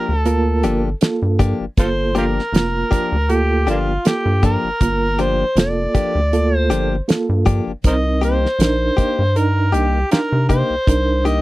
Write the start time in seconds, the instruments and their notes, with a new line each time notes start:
Already playing: clean electric guitar F3 A#3 D4 G4, harmonica A#4
0.09 analog synth bass D2
0.16 harmonica A4
0.25 reed electric piano A#3 F4 A#4, closed hi-hat
0.63 analog synth bass G1, clean electric guitar F3 A#3 D4 G4, closed hi-hat
1.01 reed electric piano A#3 F4 A4, snare, closed hi-hat
1.22 analog synth bass G2
1.39 clean electric guitar F3 A#3 D4 G4, kick, closed hi-hat
1.60 analog synth bass G1
1.77 analog synth bass G1, reed electric piano A#3 F4 A4, harmonica F4 A4 C5, kick, closed hi-hat
2.15 clean electric guitar F3 A#3 D4 G4, harmonica F4 G4 A#4, closed hi-hat
2.39 snare
2.53 analog synth bass F1, reed electric piano A#3 F4 A#4, snare, closed hi-hat
2.91 clean electric guitar F3 A#3 D4 G4, kick, closed hi-hat
3.12 analog synth bass D2
3.29 reed electric piano A#3 F4 A4, harmonica G4, closed hi-hat
3.67 analog synth bass G1, clean electric guitar F3 A#3 D4 G4, harmonica A#3 D4 F4, closed hi-hat
4.05 reed electric piano A#3 F4 A4, harmonica G4, snare, closed hi-hat
4.26 analog synth bass G2
4.43 clean electric guitar F3 A#3 D4 G4, harmonica A#4, kick, closed hi-hat
4.64 analog synth bass G1
4.81 analog synth bass G1, reed electric piano A#3 F4 A#4, kick, closed hi-hat
5.19 clean electric guitar F3 A#3 D4 G4, harmonica C5, closed hi-hat
5.56 analog synth bass F1, reed electric piano A#3 F4 A4, snare, closed hi-hat
5.60 harmonica D5
5.95 clean electric guitar F3 A#3 D4 G4, kick, closed hi-hat
6.15 analog synth bass D2
6.33 reed electric piano A#3 F4 A4, closed hi-hat
6.58 harmonica C5
6.70 analog synth bass G1, clean electric guitar F3 A#3 D4 G4, closed hi-hat
7.08 reed electric piano A#3 F4 A4, snare, closed hi-hat
7.29 analog synth bass G2
7.46 clean electric guitar F3 A#3 D4 G4, kick, closed hi-hat
7.67 analog synth bass G1
7.84 analog synth bass C2, reed electric piano C4 D#4 A#4, harmonica A#4 C5 D#5, kick, closed hi-hat
8.21 clean electric guitar A#3 D#4 G4, harmonica C5, closed hi-hat
8.45 snare
8.59 analog synth bass A#1, reed electric piano D4 D#4 A#4, snare, closed hi-hat
8.97 clean electric guitar A#3 D#4 G4, kick, closed hi-hat
9.19 analog synth bass G2
9.36 reed electric piano D4 D#4 A#4, harmonica A#4, closed hi-hat
9.72 analog synth bass C2, clean electric guitar A#3 D#4 G4, harmonica G4, closed hi-hat
10.11 reed electric piano D4 D#4 A#4, harmonica F4 G4 A#4, snare, closed hi-hat
10.32 analog synth bass C3
10.49 clean electric guitar A#3 D#4 G4, harmonica C5, kick, closed hi-hat
10.70 analog synth bass C2
10.87 analog synth bass C2, reed electric piano D4 D#4 A#4, kick, closed hi-hat
11.25 clean electric guitar A#3 D#4 G4, harmonica D#5, closed hi-hat